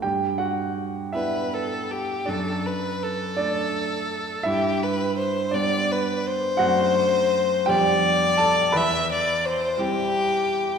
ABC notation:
X:1
M:6/8
L:1/8
Q:3/8=56
K:G
V:1 name="Violin"
z3 B A G | A B A4 | G B c d B c- | c3 d3 |
e d c G3 |]
V:2 name="Grand piano"
[Gg] [Ff]2 [Ee]3 | [Dd]3 [Dd]3 | [Ee]3 [Dd]3 | [Ff]3 [Gg]2 [Aa] |
[Bb]6 |]
V:3 name="Grand piano"
G,,3 [B,D]3 | F,,3 A,3 | G,,3 [G,B,]3 | [F,,A,CD]3 [=F,,G,B,D]3 |
E,,3 [G,CE]3 |]